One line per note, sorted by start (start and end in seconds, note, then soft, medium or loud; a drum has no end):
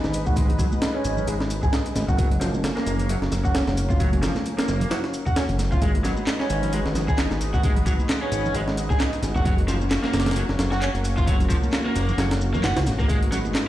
0.00 2.15 G#3 medium
0.00 2.15 D#4 medium
0.00 2.15 B4 medium
0.00 high conga medium
0.00 shaker soft
0.04 0.67 G#1 medium
0.04 snare medium
0.13 closed hi-hat medium
0.13 shaker medium
0.26 0.33 F#4 medium
0.26 kick medium
0.26 high conga medium
0.26 shaker soft
0.36 0.45 G#3 medium
0.36 kick loud
0.36 closed hi-hat medium
0.36 shaker soft
0.48 closed hi-hat soft
0.48 high conga medium
0.48 low conga medium
0.59 0.64 F#3 loud
0.59 kick medium
0.59 closed hi-hat medium
0.59 shaker medium
0.72 high conga loud
0.72 shaker soft
0.82 snare loud
0.82 closed hi-hat medium
0.82 shaker soft
0.95 1.26 C#4 loud
1.05 1.22 G#1 loud
1.05 closed hi-hat medium
1.05 shaker medium
1.17 low conga medium
1.17 shaker soft
1.27 1.64 G#1 loud
1.27 1.32 G#3 medium
1.27 closed hi-hat medium
1.27 shaker soft
1.40 snare medium
1.50 closed hi-hat medium
1.50 shaker medium
1.63 1.70 G#2 medium
1.63 1.72 G#4 medium
1.63 kick medium
1.63 shaker soft
1.73 1.78 D#4 medium
1.73 snare loud
1.73 closed hi-hat medium
1.73 shaker soft
1.86 closed hi-hat soft
1.86 shaker soft
1.95 2.05 G#1 medium
1.95 snare soft
1.95 closed hi-hat medium
1.95 high conga medium
1.95 shaker medium
2.08 2.71 F#1 loud
2.08 2.15 F#4 medium
2.08 kick medium
2.08 shaker soft
2.18 2.27 F#3 medium
2.18 5.79 A#3 medium
2.18 5.79 C#4 medium
2.18 kick loud
2.18 closed hi-hat medium
2.18 shaker soft
2.31 closed hi-hat soft
2.31 high conga medium
2.41 2.46 F3 loud
2.41 snare soft
2.41 closed hi-hat medium
2.41 shaker medium
2.54 high conga loud
2.54 shaker soft
2.64 snare loud
2.64 closed hi-hat medium
2.64 shaker soft
2.77 3.08 A#3 loud
2.77 snare medium
2.86 3.17 F#1 loud
2.86 closed hi-hat medium
2.86 shaker medium
2.99 closed hi-hat soft
2.99 low conga medium
2.99 shaker soft
3.09 3.14 F#3 medium
3.09 closed hi-hat medium
3.09 shaker soft
3.22 3.30 F#1 medium
3.22 snare soft
3.31 3.62 F#1 medium
3.31 snare soft
3.31 closed hi-hat medium
3.31 low conga medium
3.31 shaker medium
3.45 3.54 F#4 medium
3.45 kick medium
3.45 shaker soft
3.54 3.59 C#4 medium
3.54 snare loud
3.54 closed hi-hat medium
3.54 shaker soft
3.67 4.30 F#1 medium
3.67 snare medium
3.67 high conga medium
3.67 shaker soft
3.77 closed hi-hat medium
3.77 shaker medium
3.90 3.96 F4 medium
3.90 kick medium
3.90 high conga medium
3.90 shaker soft
4.00 4.08 F#3 medium
4.00 kick loud
4.00 closed hi-hat medium
4.00 shaker soft
4.12 closed hi-hat soft
4.12 high conga medium
4.12 low conga medium
4.23 4.28 F3 loud
4.23 snare loud
4.23 closed hi-hat medium
4.23 shaker medium
4.35 snare soft
4.35 high conga loud
4.35 shaker soft
4.46 closed hi-hat medium
4.46 shaker soft
4.58 4.90 A#3 loud
4.58 snare loud
4.58 closed hi-hat medium
4.68 4.86 F#1 loud
4.68 snare soft
4.68 shaker medium
4.81 closed hi-hat medium
4.81 low conga loud
4.81 shaker soft
4.91 4.96 F#3 medium
4.91 snare loud
4.91 closed hi-hat medium
4.91 shaker soft
5.04 snare soft
5.14 closed hi-hat medium
5.14 shaker medium
5.26 5.36 F#4 medium
5.26 kick medium
5.26 shaker soft
5.36 5.41 C#4 medium
5.36 snare loud
5.36 closed hi-hat medium
5.36 shaker soft
5.49 5.78 F#1 medium
5.49 closed hi-hat soft
5.49 shaker soft
5.59 snare soft
5.59 closed hi-hat medium
5.59 high conga medium
5.59 shaker medium
5.72 5.78 F4 medium
5.72 kick medium
5.72 shaker soft
5.81 6.12 G#1 medium
5.81 9.42 G#3 medium
5.81 5.90 G#3 medium
5.81 9.42 D#4 medium
5.81 13.68 F#4 medium
5.81 9.42 B4 medium
5.81 kick loud
5.81 closed hi-hat medium
5.81 shaker soft
5.94 closed hi-hat soft
5.94 high conga medium
6.04 6.09 F#3 loud
6.04 snare soft
6.04 closed hi-hat medium
6.04 shaker medium
6.17 high conga medium
6.17 shaker soft
6.27 snare loud
6.27 clap loud
6.27 closed hi-hat medium
6.27 shaker soft
6.40 6.72 C#4 medium
6.40 snare medium
6.50 6.80 G#1 loud
6.50 closed hi-hat medium
6.50 shaker medium
6.63 closed hi-hat soft
6.63 low conga medium
6.63 shaker soft
6.73 6.78 G#3 medium
6.73 closed hi-hat medium
6.73 shaker soft
6.86 6.93 G#1 medium
6.86 snare soft
6.95 7.26 G#1 medium
6.95 snare soft
6.95 closed hi-hat medium
6.95 low conga medium
6.95 shaker medium
7.08 7.18 G#4 medium
7.08 kick medium
7.08 shaker soft
7.18 7.23 D#4 medium
7.18 snare loud
7.18 clap loud
7.18 closed hi-hat medium
7.18 shaker soft
7.31 7.94 G#1 medium
7.31 snare medium
7.31 high conga medium
7.31 shaker soft
7.41 closed hi-hat medium
7.41 shaker medium
7.54 7.60 F#4 medium
7.54 kick medium
7.54 high conga medium
7.54 shaker soft
7.63 7.72 G#3 medium
7.63 kick loud
7.63 closed hi-hat medium
7.63 shaker soft
7.76 closed hi-hat soft
7.76 high conga medium
7.76 low conga medium
7.86 7.91 F#3 loud
7.86 kick medium
7.86 closed hi-hat medium
7.86 shaker medium
7.99 high conga medium
7.99 shaker soft
8.09 snare loud
8.09 clap loud
8.09 closed hi-hat medium
8.09 shaker soft
8.22 8.54 C#4 loud
8.32 8.50 G#1 loud
8.32 closed hi-hat medium
8.32 shaker medium
8.45 low conga medium
8.45 shaker soft
8.55 8.92 G#1 loud
8.55 8.60 G#3 medium
8.55 closed hi-hat medium
8.55 shaker soft
8.68 snare medium
8.77 closed hi-hat medium
8.77 shaker medium
8.90 8.98 G#2 medium
8.90 9.00 G#4 medium
8.90 kick loud
8.90 shaker soft
9.00 9.05 D#4 medium
9.00 snare loud
9.00 clap loud
9.00 closed hi-hat medium
9.00 shaker soft
9.13 closed hi-hat soft
9.13 shaker soft
9.23 9.33 G#1 medium
9.23 snare soft
9.23 closed hi-hat medium
9.23 high conga medium
9.23 shaker medium
9.36 9.99 F#1 loud
9.36 9.42 F#4 medium
9.36 kick medium
9.36 shaker soft
9.45 9.54 F#3 medium
9.45 13.06 A#3 medium
9.45 13.06 C#4 medium
9.45 kick loud
9.45 closed hi-hat medium
9.45 shaker soft
9.58 closed hi-hat soft
9.58 high conga medium
9.68 9.73 F3 loud
9.68 snare soft
9.68 closed hi-hat medium
9.68 shaker medium
9.81 high conga medium
9.81 shaker soft
9.91 snare loud
9.91 clap loud
9.91 closed hi-hat medium
9.91 shaker soft
10.04 10.36 A#3 loud
10.04 snare medium
10.14 10.44 F#1 loud
10.14 snare medium
10.14 closed hi-hat medium
10.14 shaker medium
10.20 snare medium
10.20 closed hi-hat medium
10.26 snare medium
10.26 closed hi-hat medium
10.26 low conga medium
10.26 shaker soft
10.31 snare medium
10.31 closed hi-hat medium
10.36 10.41 F#3 medium
10.36 closed hi-hat medium
10.36 shaker soft
10.49 10.57 F#1 medium
10.49 snare soft
10.59 10.90 F#1 medium
10.59 snare loud
10.59 closed hi-hat medium
10.59 low conga medium
10.59 shaker medium
10.72 10.81 F#4 medium
10.72 snare medium
10.72 shaker soft
10.82 10.87 C#4 medium
10.82 clap loud
10.82 closed hi-hat medium
10.82 shaker soft
10.95 11.58 F#1 medium
10.95 closed hi-hat soft
10.95 high conga medium
10.95 shaker soft
11.05 closed hi-hat medium
11.05 shaker medium
11.17 11.24 F4 medium
11.17 kick medium
11.17 high conga medium
11.17 shaker soft
11.27 11.36 F#3 medium
11.27 kick loud
11.27 closed hi-hat medium
11.27 shaker soft
11.40 closed hi-hat soft
11.40 high conga medium
11.40 low conga medium
11.40 shaker soft
11.50 11.55 F3 loud
11.50 kick medium
11.50 closed hi-hat medium
11.50 shaker medium
11.63 high conga medium
11.63 shaker soft
11.73 snare loud
11.73 clap loud
11.73 closed hi-hat medium
11.73 shaker soft
11.85 12.17 A#3 medium
11.96 12.13 F#1 medium
11.96 closed hi-hat medium
11.96 shaker medium
12.09 low conga medium
12.09 shaker soft
12.18 12.56 F#1 loud
12.18 12.23 F#3 medium
12.18 snare loud
12.18 closed hi-hat medium
12.18 shaker soft
12.31 snare loud
12.31 closed hi-hat medium
12.31 shaker soft
12.41 shaker medium
12.54 12.65 F#2 medium
12.54 12.60 A#3 medium
12.54 shaker soft
12.64 12.73 F#1 medium
12.64 12.76 F#4 medium
12.64 snare loud
12.64 clap loud
12.64 closed hi-hat medium
12.64 shaker soft
12.77 12.88 C#2 medium
12.77 snare loud
12.77 closed hi-hat medium
12.77 shaker soft
12.86 13.51 G#1 medium
12.86 snare soft
12.86 closed hi-hat medium
12.86 high conga medium
12.86 shaker medium
12.99 13.06 A#3 loud
12.99 kick medium
12.99 shaker soft
13.09 13.17 G#3 medium
13.09 13.68 G#3 medium
13.09 13.68 D#4 medium
13.09 13.68 B4 medium
13.09 kick loud
13.09 closed hi-hat medium
13.09 shaker soft
13.22 closed hi-hat soft
13.22 high conga medium
13.32 13.37 F#3 loud
13.32 snare medium
13.32 closed hi-hat medium
13.32 shaker medium
13.45 muted conga medium
13.45 high conga medium
13.45 shaker soft
13.55 snare loud
13.55 clap loud
13.55 closed hi-hat medium
13.55 shaker soft